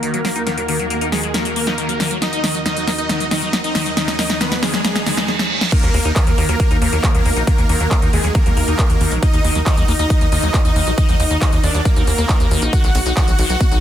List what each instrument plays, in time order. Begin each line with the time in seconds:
Already playing: analog synth pad D#2 D#3 F#4 A#4, riser
0.03 acid bass D#3, closed hi-hat
0.14 acid bass F#3, supersaw synth A#3 A#4, closed hi-hat
0.25 acid bass A#3, snare, open hi-hat
0.36 acid bass D#4, closed hi-hat
0.47 acid bass D#3, supersaw synth A#3 A#4, snare, closed hi-hat
0.57 acid bass F#3, closed hi-hat
0.68 acid bass D#3, supersaw synth A#3 A#4, open hi-hat
0.79 acid bass F#3, closed hi-hat
0.90 acid bass A#3, supersaw synth A#3 A#4, closed hi-hat
1.01 acid bass D#4, closed hi-hat
1.12 acid bass D#3, supersaw synth G#3 G#4, snare, open hi-hat
1.23 acid bass F#3, closed hi-hat
1.34 acid bass D#3, supersaw synth A#3 A#4, snare, closed hi-hat
1.45 acid bass F#3, closed hi-hat
1.56 acid bass A#3, open hi-hat
1.67 acid bass D#4, snare, closed hi-hat
1.78 acid bass D#3, closed hi-hat
1.89 acid bass F#3, closed hi-hat
2.00 acid bass D#3, snare, open hi-hat
2.11 acid bass F#3, closed hi-hat
2.22 acid bass A#3, supersaw synth D#4 D#5, snare, closed hi-hat
2.33 acid bass D#4, closed hi-hat
2.44 acid bass D#3, snare, open hi-hat
2.55 acid bass F#3, closed hi-hat
2.66 acid bass D#3, supersaw synth D#4 D#5, snare, closed hi-hat
2.77 acid bass F#3, closed hi-hat
2.87 acid bass A#3, snare, open hi-hat
2.98 supersaw synth D#4 D#5, acid bass D#4, closed hi-hat
3.09 acid bass D#3, snare, closed hi-hat
3.20 acid bass F#3, closed hi-hat
3.31 acid bass D#3, supersaw synth D#4 D#5, snare, open hi-hat
3.42 acid bass F#3, closed hi-hat
3.53 acid bass A#3, snare, closed hi-hat
3.64 supersaw synth D#4 D#5, acid bass D#4, closed hi-hat
3.75 acid bass D#3, snare, open hi-hat
3.86 acid bass F#3, closed hi-hat
3.97 acid bass D#3, supersaw synth D#4 D#5, snare, closed hi-hat
4.08 acid bass F#3, snare, closed hi-hat
4.19 acid bass A#3, supersaw synth D#4 D#5, snare, open hi-hat
4.30 acid bass D#4, snare, closed hi-hat
4.41 acid bass D#3, supersaw synth B3 B4, snare, closed hi-hat
4.52 acid bass F#3, snare, closed hi-hat
4.63 acid bass D#3, supersaw synth G#3 G#4, snare, open hi-hat
4.74 acid bass F#3, snare, closed hi-hat
4.84 supersaw synth G#3 G#4, acid bass A#3, snare, closed hi-hat, reverse cymbal
4.95 acid bass D#4, snare, closed hi-hat
5.06 acid bass D#3, snare, open hi-hat
5.17 acid bass A#3, snare, closed hi-hat
5.28 snare
5.39 snare
5.61 snare
5.72 analog synth pad D#3 D#4 F#4 A#4, acid bass D#3, supersaw synth A#3 A#4, kick, closed hi-hat, crash
5.83 analog synth bass D#2, acid bass F#3, closed hi-hat
5.94 analog synth bass D#2, acid bass A#3, open hi-hat
6.05 analog synth bass D#2, acid bass D#4, closed hi-hat
6.16 acid bass D#3, supersaw synth A#3 A#4, kick, clap, closed hi-hat
6.27 analog synth bass D#2, acid bass F#3, closed hi-hat
6.38 analog synth bass D#2, acid bass D#3, open hi-hat
6.49 analog synth bass D#2, acid bass F#3, supersaw synth A#3 A#4, closed hi-hat
6.60 acid bass A#3, kick, closed hi-hat
6.71 analog synth bass D#2, acid bass D#4, closed hi-hat
6.82 analog synth bass D#2, acid bass D#3, supersaw synth A#3 A#4, open hi-hat
6.93 analog synth bass D#2, acid bass F#3, closed hi-hat
7.04 acid bass D#3, kick, clap, closed hi-hat
7.14 analog synth bass D#2, acid bass F#3, supersaw synth A#3 A#4, closed hi-hat
7.25 analog synth bass D#2, acid bass A#3, open hi-hat
7.36 analog synth bass A#1, acid bass D#4, closed hi-hat
7.47 acid bass D#3, supersaw synth A#3 A#4, kick, closed hi-hat
7.58 analog synth bass D#2, acid bass F#3, closed hi-hat
7.69 analog synth bass D#2, acid bass D#3, supersaw synth A#3 A#4, open hi-hat
7.80 analog synth bass D#2, acid bass F#3, closed hi-hat
7.91 acid bass A#3, supersaw synth A#3 A#4, kick, clap, closed hi-hat
8.02 analog synth bass D#2, acid bass D#4, closed hi-hat
8.13 analog synth bass D#2, acid bass D#3, supersaw synth G#3 G#4, open hi-hat
8.24 analog synth bass D#2, acid bass F#3, closed hi-hat
8.35 acid bass D#3, supersaw synth A#3 A#4, kick, closed hi-hat
8.46 analog synth bass D#2, acid bass F#3, closed hi-hat
8.57 analog synth bass D#2, acid bass A#3, open hi-hat
8.68 analog synth bass D#2, acid bass D#4, closed hi-hat
8.79 kick, clap, closed hi-hat
8.90 analog synth bass D#2, acid bass F#3, closed hi-hat
9.01 analog synth bass D#2, acid bass D#3, open hi-hat
9.12 analog synth bass A#1, acid bass F#3, closed hi-hat
9.22 acid bass A#3, supersaw synth D#4 D#5, kick, closed hi-hat
9.33 analog synth bass D#2, acid bass D#4, closed hi-hat
9.44 analog synth bass D#2, acid bass D#3, open hi-hat
9.55 analog synth bass D#2, acid bass F#3, closed hi-hat
9.66 acid bass D#3, supersaw synth D#4 D#5, kick, clap, closed hi-hat
9.77 analog synth bass D#2, acid bass F#3, closed hi-hat
9.88 analog synth bass D#2, acid bass A#3, open hi-hat
9.99 analog synth bass D#2, supersaw synth D#4 D#5, acid bass D#4, closed hi-hat
10.10 acid bass D#3, kick, closed hi-hat
10.21 analog synth bass D#2, acid bass F#3, closed hi-hat
10.32 analog synth bass D#2, acid bass D#3, supersaw synth D#4 D#5, open hi-hat
10.43 analog synth bass D#2, acid bass F#3, closed hi-hat
10.54 kick, clap, closed hi-hat
10.65 analog synth bass D#2, supersaw synth D#4 D#5, acid bass D#4, closed hi-hat
10.76 analog synth bass D#2, acid bass D#3, open hi-hat
10.87 analog synth bass A#1, acid bass F#3, closed hi-hat
10.98 acid bass D#3, supersaw synth D#4 D#5, kick, closed hi-hat
11.09 analog synth bass D#2, acid bass F#3, closed hi-hat
11.20 analog synth bass D#2, acid bass A#3, supersaw synth D#4 D#5, open hi-hat
11.31 analog synth bass D#2, acid bass D#4, closed hi-hat
11.42 acid bass D#3, supersaw synth D#4 D#5, kick, clap, closed hi-hat
11.52 analog synth bass D#2, acid bass F#3, closed hi-hat
11.63 analog synth bass D#2, acid bass D#3, supersaw synth D4 D5, open hi-hat
11.74 analog synth bass D#2, acid bass F#3, closed hi-hat
11.85 supersaw synth A#3 A#4, acid bass A#3, kick, closed hi-hat
11.96 analog synth bass D#2, acid bass D#4, closed hi-hat
12.07 analog synth bass D#2, acid bass D#3, open hi-hat
12.18 analog synth bass D#2, acid bass A#3, closed hi-hat
12.29 acid bass D#3, kick, clap, closed hi-hat
12.40 analog synth bass D#2, acid bass D#3, closed hi-hat
12.51 analog synth bass D#2, acid bass D#3, open hi-hat
12.62 analog synth bass A#1, acid bass D#4, closed hi-hat
12.73 acid bass D#3, analog synth pad B3 D#4, supersaw synth F#4 F#5, kick, closed hi-hat, ride
12.84 analog synth bass B1, acid bass F#3, closed hi-hat
12.95 analog synth bass B1, acid bass B3, open hi-hat, ride
13.06 analog synth bass B1, acid bass D#4, closed hi-hat
13.17 acid bass D#3, supersaw synth F#4 F#5, kick, clap, closed hi-hat, ride
13.28 analog synth bass B1, acid bass F#3, closed hi-hat
13.39 analog synth bass B1, acid bass D#3, open hi-hat, ride
13.49 analog synth bass B1, acid bass F#3, supersaw synth F#4 F#5, closed hi-hat
13.60 acid bass B3, kick, closed hi-hat, ride
13.71 analog synth bass B1, acid bass D#4, closed hi-hat